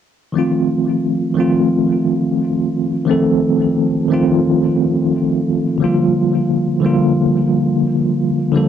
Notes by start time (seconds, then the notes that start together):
0.32 D#3 F3 A3
0.37 C4 F4
1.34 D#3 F3 A3
1.38 C4 F4
3.05 D#3 F3 A3
3.09 C4 A4
4.08 D#3 F3 A3
4.12 C4 F4
5.78 D3 F3 G3
5.83 A#3 F4
6.80 D3 F3 G3
6.84 A#3 F4
8.52 D3 F3 G3
8.56 A#3 A4